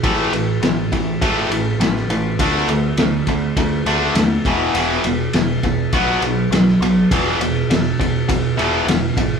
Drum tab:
RD |x-x-x-x-x-x-x-x-|x-x-x-x-x-x-x-x-|x-x-x-x-x-x-x-x-|x-x-x-x-x-x-x-x-|
SD |----o-------oo--|----o-------o---|----o-------oo--|----o-------o---|
BD |o-----o-o-------|o-----o-o-----o-|------o-o-------|o-----o-o-----o-|